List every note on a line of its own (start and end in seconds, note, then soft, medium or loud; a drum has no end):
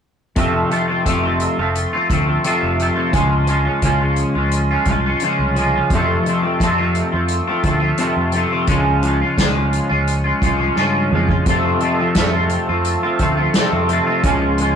0.36 0.63 F1 medium
0.36 1.05 F2 medium
0.36 1.06 C3 medium
0.36 0.69 F3 medium
0.36 0.70 A3 medium
0.36 0.70 C4 medium
0.36 0.72 F4 medium
0.36 kick medium
0.36 closed hi-hat medium
0.70 0.91 F3 medium
0.70 0.89 A3 medium
0.70 0.88 C4 medium
0.70 0.87 F4 medium
0.70 closed hi-hat soft
0.88 1.07 F3 soft
0.88 1.07 A3 soft
0.88 1.07 C4 medium
0.88 1.09 F4 medium
1.05 1.46 F1 medium
1.05 1.58 F2 medium
1.05 1.59 C3 medium
1.05 1.27 F3 medium
1.05 1.25 A3 medium
1.05 1.24 C4 medium
1.05 kick medium
1.05 closed hi-hat medium
1.09 1.23 F4 medium
1.23 1.60 A3 soft
1.23 1.60 C4 medium
1.23 1.59 F4 medium
1.28 1.62 F3 medium
1.40 closed hi-hat medium
1.58 1.85 F1 medium
1.58 1.94 A3 soft
1.58 1.93 C4 medium
1.58 1.92 F4 medium
1.63 1.95 F3 soft
1.75 closed hi-hat medium
1.93 2.10 F3 soft
1.93 2.10 A3 soft
1.93 2.11 C4 medium
1.93 2.13 F4 medium
2.10 2.37 D2 medium
2.10 2.30 F3 medium
2.10 2.28 A3 medium
2.10 2.27 C4 medium
2.10 2.26 F4 medium
2.10 kick medium
2.10 closed hi-hat soft
2.27 2.45 F3 soft
2.27 2.45 A3 soft
2.27 2.46 C4 soft
2.27 2.47 F4 medium
2.44 3.12 F2 medium
2.44 3.12 C3 medium
2.44 2.79 F3 medium
2.44 2.80 A3 medium
2.44 2.81 C4 medium
2.44 2.82 F4 medium
2.44 closed hi-hat medium
2.63 2.89 F1 medium
2.79 2.98 F3 medium
2.79 2.96 A3 medium
2.79 2.96 C4 medium
2.79 2.95 F4 medium
2.79 closed hi-hat soft
2.95 3.13 F3 soft
2.95 3.12 A3 soft
2.95 3.12 C4 medium
2.95 3.15 F4 medium
3.12 3.67 C#2 medium
3.12 3.81 C#3 medium
3.12 3.47 F3 medium
3.12 3.46 G#3 medium
3.12 3.48 C#4 medium
3.12 3.50 F4 medium
3.12 kick medium
3.12 closed hi-hat medium
3.47 3.84 F3 medium
3.47 3.68 G#3 medium
3.47 3.66 C#4 medium
3.47 3.65 F4 medium
3.47 closed hi-hat soft
3.65 3.84 G#3 soft
3.65 3.84 C#4 medium
3.65 3.86 F4 medium
3.82 4.23 C#2 medium
3.82 4.35 C#3 medium
3.82 4.87 F3 medium
3.82 4.02 G#3 medium
3.82 4.00 C#4 medium
3.82 kick medium
3.82 closed hi-hat medium
3.86 4.00 F4 medium
4.00 4.37 G#3 soft
4.00 4.36 C#4 soft
4.00 4.35 F4 medium
4.16 closed hi-hat soft
4.35 4.75 C#2 medium
4.35 4.72 G#3 soft
4.35 4.71 C#4 medium
4.35 4.70 F4 medium
4.51 closed hi-hat medium
4.71 4.87 G#3 medium
4.71 4.89 C#4 medium
4.71 4.90 F4 medium
4.85 5.13 C2 medium
4.85 5.23 F3 medium
4.85 5.08 G#3 medium
4.85 kick medium
4.85 closed hi-hat soft
4.90 5.06 C#4 medium
4.90 5.06 F4 medium
5.06 5.23 G#3 soft
5.06 5.23 C#4 medium
5.06 5.25 F4 medium
5.20 5.89 C#3 medium
5.20 5.55 F3 medium
5.20 closed hi-hat medium
5.24 5.56 G#3 medium
5.24 5.57 C#4 medium
5.24 5.59 F4 medium
5.39 5.79 C2 medium
5.55 5.94 F3 medium
5.55 5.78 G#3 medium
5.55 5.76 C#4 medium
5.55 closed hi-hat soft
5.60 5.75 F4 medium
5.75 5.92 G#3 soft
5.75 5.91 C#4 medium
5.75 5.96 F4 medium
5.90 6.18 F2 medium
5.90 6.60 F2 medium
5.90 6.61 C3 medium
5.90 kick medium
5.90 closed hi-hat medium
5.94 6.26 F3 medium
5.94 6.26 A3 medium
5.94 6.27 C4 medium
5.94 6.29 F4 medium
6.26 6.46 F3 medium
6.26 6.44 A3 medium
6.26 6.43 C4 medium
6.26 6.42 F4 medium
6.26 closed hi-hat soft
6.43 6.62 F3 medium
6.43 6.62 A3 soft
6.43 6.62 C4 medium
6.43 6.63 F4 medium
6.60 7.01 F2 medium
6.60 7.13 F2 medium
6.60 7.13 C3 medium
6.60 6.81 F3 medium
6.60 6.79 A3 medium
6.60 6.78 C4 medium
6.60 6.78 F4 medium
6.60 kick medium
6.60 closed hi-hat medium
6.78 7.15 F3 soft
6.78 7.13 A3 medium
6.78 7.12 C4 medium
6.78 7.12 F4 medium
6.95 closed hi-hat medium
7.12 7.40 F2 medium
7.12 7.50 F3 soft
7.12 7.49 A3 soft
7.12 7.47 C4 medium
7.12 7.47 F4 medium
7.28 closed hi-hat medium
7.48 7.64 F3 soft
7.48 7.64 A3 medium
7.48 7.65 C4 medium
7.48 7.67 F4 medium
7.63 7.91 D2 medium
7.63 7.83 F3 medium
7.63 7.81 A3 medium
7.63 7.80 C4 medium
7.63 7.79 F4 medium
7.63 kick medium
7.63 closed hi-hat medium
7.80 7.98 F3 soft
7.80 7.99 A3 soft
7.80 7.99 C4 soft
7.80 8.01 F4 medium
7.98 8.66 F2 medium
7.98 8.67 C3 medium
7.98 8.33 F3 medium
7.98 8.34 A3 medium
7.98 8.35 C4 medium
7.98 closed hi-hat medium
8.02 8.37 F4 medium
8.17 8.44 F2 medium
8.32 8.54 F3 medium
8.32 8.53 A3 medium
8.32 8.52 C4 medium
8.32 closed hi-hat medium
8.37 8.51 F4 medium
8.52 8.68 F3 medium
8.52 8.68 A3 medium
8.52 8.68 C4 medium
8.52 8.71 F4 medium
8.67 9.22 C#2 medium
8.67 9.36 C#3 medium
8.67 9.03 F3 medium
8.67 9.04 G#3 medium
8.67 9.05 C#4 medium
8.67 kick medium
8.67 closed hi-hat medium
8.71 9.07 F4 medium
9.03 9.38 F3 medium
9.03 9.24 G#3 soft
9.03 9.23 C#4 medium
9.03 closed hi-hat soft
9.08 9.21 F4 medium
9.21 9.37 G#3 soft
9.21 9.39 C#4 soft
9.21 9.40 F4 medium
9.37 9.78 C#2 medium
9.37 9.90 C#3 medium
9.37 10.42 F3 medium
9.37 9.57 G#3 medium
9.37 9.55 C#4 medium
9.37 9.55 F4 medium
9.37 kick medium
9.37 snare medium
9.37 closed hi-hat medium
9.55 9.91 G#3 soft
9.55 9.89 C#4 soft
9.55 9.89 F4 medium
9.73 closed hi-hat medium
9.89 10.31 C#2 medium
9.89 10.26 G#3 soft
9.89 10.24 C#4 medium
9.89 10.24 F4 medium
10.07 closed hi-hat medium
10.24 10.43 G#3 medium
10.24 10.43 C#4 medium
10.24 10.45 F4 medium
10.42 10.69 C2 medium
10.42 10.77 F3 medium
10.42 10.60 G#3 medium
10.42 10.59 C#4 medium
10.42 kick medium
10.42 closed hi-hat soft
10.46 10.58 F4 medium
10.59 10.76 G#3 soft
10.59 10.77 C#4 medium
10.59 10.78 F4 medium
10.76 11.08 G2 medium
10.76 11.44 C#3 medium
10.76 11.12 F3 medium
10.76 11.13 G#3 medium
10.76 11.13 C#4 medium
10.76 11.15 F4 medium
10.76 snare soft
11.11 11.43 F2 medium
11.11 11.48 F3 medium
11.11 11.32 G#3 medium
11.11 11.29 C#4 medium
11.11 11.28 F4 medium
11.11 mid tom medium
11.29 11.46 C#4 medium
11.29 11.50 F4 medium
11.29 kick medium
11.33 11.47 G#3 soft
11.46 11.73 F2 medium
11.46 12.13 F2 medium
11.46 12.15 C3 medium
11.46 11.81 F3 medium
11.46 11.81 A3 medium
11.46 14.76 F4 soft
11.46 14.22 A4 soft
11.46 14.22 C5 soft
11.46 14.22 A5 medium
11.46 kick medium
11.46 closed hi-hat medium
11.50 11.82 C4 medium
11.50 11.84 F4 medium
11.80 12.01 F3 medium
11.80 11.99 A3 medium
11.80 11.99 C4 medium
11.80 closed hi-hat soft
11.85 11.98 F4 medium
11.99 12.16 F3 medium
11.99 12.16 A3 soft
11.99 12.17 C4 medium
11.99 12.18 F4 medium
12.15 12.68 F2 medium
12.15 12.56 F2 medium
12.15 12.68 C3 medium
12.15 12.36 F3 medium
12.15 12.34 A3 medium
12.15 12.33 C4 medium
12.15 kick medium
12.15 snare medium
12.15 closed hi-hat medium
12.19 12.33 F4 medium
12.33 12.72 F3 soft
12.33 12.70 A3 soft
12.33 12.69 C4 medium
12.33 12.69 F4 medium
12.49 closed hi-hat soft
12.69 12.96 F2 medium
12.69 13.06 F3 soft
12.69 13.04 A3 soft
12.69 13.03 C4 medium
12.69 13.03 F4 medium
12.85 closed hi-hat medium
13.03 13.19 F3 soft
13.03 13.20 A3 medium
13.03 13.21 C4 medium
13.03 13.22 F4 medium
13.19 13.47 D2 medium
13.19 13.40 F3 medium
13.19 13.38 A3 medium
13.19 13.37 C4 medium
13.19 13.37 F4 medium
13.19 kick medium
13.19 closed hi-hat soft
13.37 13.56 F3 soft
13.37 13.57 A3 soft
13.37 13.57 C4 soft
13.37 13.58 F4 medium
13.54 14.23 F2 medium
13.54 14.23 C3 medium
13.54 13.89 F3 medium
13.54 snare medium
13.54 closed hi-hat medium
13.58 13.89 A3 medium
13.58 13.91 C4 medium
13.58 13.92 F4 medium
13.72 13.99 F2 medium
13.89 14.10 F3 medium
13.89 14.08 A3 medium
13.89 14.07 C4 medium
13.89 closed hi-hat medium
13.93 14.06 F4 medium
14.07 14.25 F3 soft
14.07 14.24 A3 medium
14.07 14.24 C4 medium
14.07 14.27 F4 medium
14.23 14.76 C#2 medium
14.23 14.76 C#3 medium
14.23 14.59 F3 medium
14.23 14.60 G#3 medium
14.23 14.61 C#4 medium
14.23 14.76 G#4 soft
14.23 14.76 C#5 medium
14.23 14.76 G#5 medium
14.23 kick medium
14.23 closed hi-hat medium
14.28 14.63 F4 medium
14.58 14.76 F3 medium
14.58 14.76 G#3 medium
14.58 closed hi-hat medium
14.62 14.76 C#4 medium
14.62 14.76 F4 medium